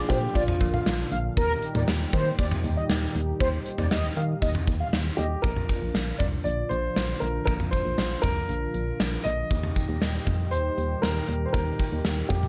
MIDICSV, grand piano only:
0, 0, Header, 1, 2, 480
1, 0, Start_track
1, 0, Key_signature, -2, "major"
1, 0, Tempo, 508475
1, 1294, Time_signature, 4, 2, 24, 8
1, 11783, End_track
2, 0, Start_track
2, 0, Title_t, "Grand piano"
2, 0, Program_c, 0, 0
2, 83, Note_on_c, 0, 67, 87
2, 311, Note_off_c, 0, 67, 0
2, 320, Note_on_c, 0, 65, 82
2, 1010, Note_off_c, 0, 65, 0
2, 4880, Note_on_c, 0, 67, 76
2, 5110, Note_off_c, 0, 67, 0
2, 5118, Note_on_c, 0, 70, 89
2, 5809, Note_off_c, 0, 70, 0
2, 5837, Note_on_c, 0, 74, 91
2, 5893, Note_off_c, 0, 74, 0
2, 6079, Note_on_c, 0, 74, 97
2, 6317, Note_on_c, 0, 72, 91
2, 6334, Note_off_c, 0, 74, 0
2, 6798, Note_on_c, 0, 70, 84
2, 6820, Note_off_c, 0, 72, 0
2, 7023, Note_off_c, 0, 70, 0
2, 7037, Note_on_c, 0, 70, 98
2, 7093, Note_off_c, 0, 70, 0
2, 7277, Note_on_c, 0, 72, 98
2, 7758, Note_on_c, 0, 70, 109
2, 7780, Note_off_c, 0, 72, 0
2, 8688, Note_off_c, 0, 70, 0
2, 8720, Note_on_c, 0, 75, 113
2, 9889, Note_off_c, 0, 75, 0
2, 9922, Note_on_c, 0, 72, 102
2, 10402, Note_on_c, 0, 70, 88
2, 10423, Note_off_c, 0, 72, 0
2, 10813, Note_on_c, 0, 72, 73
2, 10835, Note_off_c, 0, 70, 0
2, 10882, Note_on_c, 0, 70, 90
2, 10887, Note_off_c, 0, 72, 0
2, 11600, Note_on_c, 0, 67, 77
2, 11630, Note_off_c, 0, 70, 0
2, 11783, Note_off_c, 0, 67, 0
2, 11783, End_track
0, 0, End_of_file